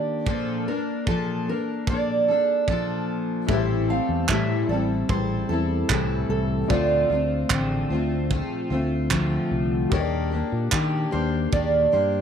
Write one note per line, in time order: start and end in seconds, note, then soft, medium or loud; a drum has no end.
0.00 0.26 D#3 medium
0.00 0.27 A#3 medium
0.00 0.27 D4 medium
0.00 0.27 G4 medium
0.00 0.27 D5 medium
0.26 0.66 A#2 medium
0.26 0.67 F3 medium
0.26 0.67 A#3 medium
0.26 0.67 D4 medium
0.26 0.67 A4 medium
0.26 0.68 C5 medium
0.26 kick medium
0.68 1.07 A#3 soft
0.68 1.07 D4 soft
0.68 1.08 A#4 medium
1.07 1.47 A#2 medium
1.07 1.48 F3 medium
1.07 1.48 A#3 medium
1.07 1.48 D4 medium
1.07 1.45 A4 medium
1.07 1.48 A4 medium
1.07 kick loud
1.49 1.87 A#3 soft
1.49 1.88 D4 soft
1.49 1.89 A#4 medium
1.87 2.28 F3 soft
1.87 2.28 A#3 medium
1.87 2.29 D4 medium
1.87 2.27 A4 medium
1.87 3.05 D5 medium
1.87 kick loud
2.28 2.68 A#3 soft
2.28 2.68 D4 soft
2.28 2.68 A4 medium
2.68 3.48 A#2 medium
2.68 3.48 F3 medium
2.68 3.49 A#3 medium
2.68 3.49 D4 medium
2.68 3.50 A4 medium
2.68 kick medium
3.47 3.98 A1 medium
3.47 3.89 A2 medium
3.47 3.89 E3 medium
3.47 3.89 G3 medium
3.47 6.65 A3 medium
3.47 3.89 C4 medium
3.47 3.89 E4 medium
3.47 6.66 G4 medium
3.47 3.87 A4 medium
3.47 3.56 B4 soft
3.47 3.90 E5 medium
3.47 kick loud
3.57 6.70 C5 medium
3.89 4.28 G3 soft
3.89 4.29 C4 soft
3.89 4.29 A4 soft
3.89 4.29 F5 medium
4.09 4.25 E2 medium
4.29 4.69 A2 medium
4.29 4.62 A2 medium
4.29 4.69 E3 medium
4.29 4.69 G3 medium
4.29 4.70 C4 medium
4.29 4.69 E4 medium
4.29 4.68 A4 medium
4.29 4.67 E5 medium
4.29 kick loud
4.29 clap loud
4.69 5.02 A1 medium
4.69 5.08 G3 soft
4.69 5.09 C4 soft
4.69 5.09 E4 soft
4.69 5.09 A4 soft
4.69 4.80 D5 medium
5.09 5.42 A1 medium
5.09 5.49 G3 soft
5.09 5.50 C4 medium
5.09 5.49 E4 medium
5.09 5.48 A4 medium
5.09 5.51 C5 medium
5.09 kick loud
5.49 5.82 E2 medium
5.49 5.89 G3 soft
5.49 5.89 C4 soft
5.49 5.89 E4 soft
5.49 6.29 A4 medium
5.49 5.90 A4 soft
5.89 6.23 C2 medium
5.89 6.70 A2 medium
5.89 6.69 E3 medium
5.89 6.70 G3 medium
5.89 6.70 C4 medium
5.89 6.71 E4 medium
5.89 6.71 A4 medium
5.89 kick medium
5.89 clap medium
6.29 6.63 C2 medium
6.29 6.67 A4 medium
6.68 7.03 D2 medium
6.68 7.10 D3 medium
6.68 7.10 F3 medium
6.68 7.11 A3 medium
6.68 9.87 C4 medium
6.68 7.10 C4 medium
6.68 9.88 F4 medium
6.68 7.09 F4 medium
6.68 8.27 D5 medium
6.68 kick loud
6.73 9.89 D5 medium
7.10 7.43 D2 medium
7.10 7.50 A3 soft
7.10 7.50 C4 soft
7.10 7.50 F4 medium
7.50 7.83 A1 medium
7.50 7.90 D3 medium
7.50 7.91 F3 medium
7.50 7.91 A3 medium
7.50 7.91 C4 medium
7.50 7.89 F4 medium
7.50 kick loud
7.50 clap loud
7.90 8.40 D2 medium
7.90 8.30 A3 soft
7.90 8.31 C4 medium
7.90 8.31 F4 medium
8.30 8.71 F3 medium
8.30 8.71 A3 medium
8.30 8.70 C4 medium
8.30 8.69 F4 medium
8.30 kick loud
8.70 9.37 D2 medium
8.70 9.10 A3 soft
8.70 9.11 C4 medium
8.70 9.11 F4 medium
9.11 9.94 D3 medium
9.11 9.91 F3 medium
9.11 9.92 A3 medium
9.11 9.92 C4 medium
9.11 9.92 F4 medium
9.11 kick medium
9.11 clap loud
9.51 9.84 C2 medium
9.89 10.41 D#2 medium
9.89 10.32 D#3 medium
9.89 12.21 G3 medium
9.89 10.32 A#3 medium
9.89 10.31 D4 medium
9.89 12.21 D#4 medium
9.89 10.30 G4 medium
9.89 11.09 A#4 medium
9.89 kick loud
9.94 9.99 C#5 medium
10.00 12.21 D5 medium
10.31 10.71 A#3 soft
10.31 10.71 D4 soft
10.31 10.72 G4 soft
10.52 10.69 A#2 medium
10.71 11.12 D#3 medium
10.71 11.05 D#3 medium
10.71 11.12 A#3 medium
10.71 11.11 D4 medium
10.71 11.10 G4 medium
10.71 kick loud
10.71 clap loud
11.11 11.46 D#2 medium
11.11 11.51 A#3 soft
11.11 11.52 D4 medium
11.11 11.52 G4 medium
11.11 11.52 C5 medium
11.52 11.86 D#2 loud
11.52 11.93 D#3 medium
11.52 11.93 A#3 medium
11.52 11.92 D4 medium
11.52 11.91 G4 medium
11.52 11.90 D5 medium
11.52 kick loud
11.92 12.21 G2 medium
11.92 12.21 A#3 soft
11.92 12.21 D4 soft
11.92 12.21 G4 medium
11.92 12.21 C5 medium